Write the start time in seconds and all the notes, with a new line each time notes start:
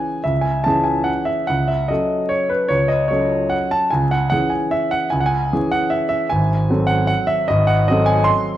Already playing: E3 C#4 G#4 G#5
0.24 C#2 E5
0.41 G#5
0.64 E3 C#4 G#4 A5
0.84 G#5
1.04 F#5
1.25 E5
1.47 C#2 F#5
1.68 E5
1.88 F#3 C#4 A4 D#5
2.29 C#5
2.49 B4
2.68 C#2 C#5
2.88 D#5
3.08 F#3 C#4 A4 C#5
3.50 F#5
3.71 A5
3.90 C#2 G#5
4.11 F#5
4.30 E3 C#4 G#4 F#5
4.50 G#5
4.71 E5
4.91 F#5
5.10 C#2 G#5
5.20 F#5
5.26 G#5
5.53 E3 C#4 G#4
5.71 F#5
5.90 E5
6.09 E5
6.30 G#1 G#5
6.70 F#3 C4 A4
6.87 F#5
7.07 F#5
7.27 E5
7.48 G#1 D#5
7.67 F#5
7.88 F#3 C4 A4 D#5
8.06 G#5
8.24 C6